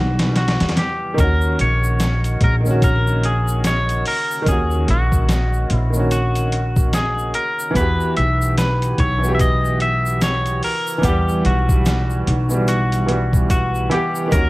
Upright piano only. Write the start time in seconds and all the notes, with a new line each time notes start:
Already playing: E3 G3 B3 F#5
1.14 D#3 A#3
1.20 C#4 F#4
2.60 D#3 A#3
2.67 C#4 F#4
4.42 D#3 A#3
4.49 C#4 F#4
5.90 D#3 A#3
5.96 C#4 F#4
7.71 E3 B3
7.77 F#4 G4
9.19 E3 B3
9.25 F#4 G4
10.98 E3 B3
11.05 G3 F#5
12.49 E3 B3 F#4
12.54 G3
13.07 E3 B3 F#4
13.12 G3
13.90 E3 B3 F#5
13.94 G4
14.28 D#3 A#3
14.34 C#4 F#4